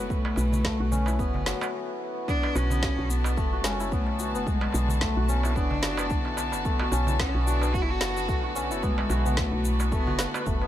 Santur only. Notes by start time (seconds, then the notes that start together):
Already playing: A3 C#4 E4 F#4
0.00 B3
0.65 A3
0.80 F#4
0.92 C#4
1.07 E4
1.19 B3
1.46 F#3
1.62 B3
2.28 B3
2.56 F#4
2.71 B3
3.37 A3
3.53 F#4
3.65 C#4
3.80 E4
3.92 B3
4.20 F#4
4.35 B3
5.01 A3
5.17 F#4
5.29 C#4
5.45 E4
5.56 B3
5.84 F#4
5.99 B3
6.65 A3
6.81 F#4
6.93 C#4
7.08 E4
7.20 B3
7.47 F#4
7.62 B3
8.28 A3
8.44 F#4
8.55 C#4
8.71 E4
8.83 B3
9.10 F#4
9.26 B3
9.92 A3
10.07 F#4
10.19 B4
10.35 B4
10.47 A3
10.62 B3